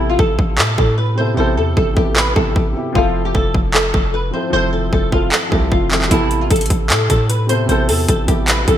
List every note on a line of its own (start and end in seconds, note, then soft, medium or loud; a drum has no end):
0.00 0.17 A1 loud
0.00 0.49 C3 medium
0.00 0.50 B3 medium
0.00 0.51 E4 medium
0.00 0.52 A4 loud
0.10 0.17 F4 medium
0.19 0.38 A1 loud
0.19 0.56 A4 medium
0.19 kick medium
0.39 0.60 A1 loud
0.39 kick medium
0.58 0.77 A2 loud
0.58 0.74 A4 medium
0.58 clap loud
0.78 1.35 A2 loud
0.78 0.94 A4 medium
0.78 kick loud
0.98 1.14 B4 medium
1.15 1.33 C3 medium
1.15 1.35 B3 medium
1.15 1.36 E4 medium
1.15 1.33 C5 medium
1.21 1.37 A4 medium
1.34 1.59 A1 loud
1.34 1.89 C3 loud
1.34 1.90 B3 medium
1.34 1.91 E4 medium
1.34 1.53 C5 loud
1.40 1.92 A4 loud
1.57 1.76 E2 loud
1.57 1.73 A4 medium
1.77 1.96 A1 loud
1.77 1.93 A4 medium
1.77 kick medium
1.94 2.35 A1 loud
1.94 2.31 C3 medium
1.94 2.32 B3 medium
1.94 2.33 E4 medium
1.94 2.13 G4 medium
1.94 kick medium
1.99 2.34 A4 medium
2.16 2.32 B4 medium
2.16 clap loud
2.33 2.55 A1 loud
2.33 2.70 C3 medium
2.33 2.71 B3 medium
2.33 2.72 E4 medium
2.33 2.52 A4 medium
2.33 kick loud
2.39 2.73 A4 medium
2.56 2.75 A1 loud
2.56 2.93 G4 medium
2.56 kick medium
2.73 2.92 C3 medium
2.73 2.93 B3 medium
2.73 2.94 E4 medium
2.79 2.95 G4 medium
2.92 3.33 F1 loud
2.92 3.65 F3 loud
2.92 3.66 C4 medium
2.92 3.67 E4 medium
2.92 3.24 F4 loud
2.92 kick loud
2.98 3.68 A4 loud
3.25 3.33 G4 medium
3.34 3.54 F1 loud
3.34 3.72 A4 medium
3.34 kick medium
3.54 3.92 F1 loud
3.54 kick medium
3.74 3.90 A4 loud
3.74 clap loud
3.93 4.32 F1 loud
3.93 4.09 A4 medium
3.93 kick loud
4.14 4.30 B4 medium
4.31 4.49 F3 medium
4.31 4.51 C4 medium
4.31 4.52 E4 medium
4.31 4.49 C5 medium
4.36 4.53 A4 medium
4.50 4.91 F1 loud
4.50 5.05 F3 loud
4.50 5.06 C4 medium
4.50 5.07 E4 medium
4.50 4.69 C5 loud
4.56 5.08 A4 loud
4.73 4.89 A4 medium
4.93 5.12 F1 loud
4.93 5.09 A4 medium
4.93 kick medium
5.09 5.31 F1 loud
5.09 5.47 F3 medium
5.09 5.48 C4 medium
5.09 5.49 E4 medium
5.09 5.28 F4 medium
5.09 kick medium
5.15 5.50 A4 medium
5.32 5.48 A4 medium
5.32 clap loud
5.49 5.71 C2 loud
5.49 5.86 F3 medium
5.49 5.87 C4 medium
5.49 5.88 E4 medium
5.49 5.68 G4 medium
5.49 kick loud
5.55 5.89 A4 medium
5.72 6.10 F1 loud
5.72 5.88 F4 medium
5.72 kick medium
5.88 6.08 F3 medium
5.88 6.09 C4 medium
5.88 6.10 E4 medium
5.88 clap medium
5.94 6.11 A4 medium
6.02 clap medium
6.08 6.49 A1 loud
6.08 6.81 C3 loud
6.08 6.82 B3 medium
6.08 6.39 E4 loud
6.08 6.83 E4 medium
6.08 kick loud
6.08 closed hi-hat medium
6.14 6.84 A4 loud
6.31 closed hi-hat medium
6.41 6.49 F4 medium
6.50 6.70 A1 loud
6.50 6.88 A4 medium
6.50 kick loud
6.50 closed hi-hat medium
6.56 closed hi-hat medium
6.61 closed hi-hat medium
6.66 closed hi-hat medium
6.70 6.92 A1 loud
6.70 kick medium
6.70 closed hi-hat medium
6.90 7.09 A2 loud
6.90 7.06 A4 medium
6.90 clap loud
6.90 closed hi-hat medium
7.10 7.67 A2 loud
7.10 7.26 A4 medium
7.10 kick loud
7.10 closed hi-hat medium
7.29 7.45 B4 medium
7.29 closed hi-hat medium
7.47 7.64 C3 medium
7.47 7.66 B3 medium
7.47 7.68 E4 medium
7.47 7.65 C5 medium
7.47 closed hi-hat medium
7.52 7.69 A4 medium
7.66 7.90 A1 loud
7.66 8.21 C3 loud
7.66 8.22 B3 medium
7.66 8.23 E4 medium
7.66 7.85 C5 loud
7.66 closed hi-hat medium
7.72 8.24 A4 loud
7.89 8.08 E2 loud
7.89 8.05 A4 medium
7.89 open hi-hat medium
8.08 8.27 A1 loud
8.08 8.24 A4 medium
8.08 kick loud
8.08 closed hi-hat medium
8.25 8.66 A1 loud
8.25 8.62 C3 medium
8.25 8.63 B3 medium
8.25 8.64 E4 medium
8.25 8.44 G4 medium
8.25 kick medium
8.25 closed hi-hat medium
8.31 8.65 A4 medium
8.48 8.64 B4 loud
8.48 clap loud
8.48 closed hi-hat medium
8.65 8.78 A1 loud
8.65 8.78 C3 medium
8.65 8.78 B3 medium
8.65 8.78 E4 medium
8.65 8.78 A4 medium
8.65 kick loud
8.65 closed hi-hat medium
8.71 8.78 A4 medium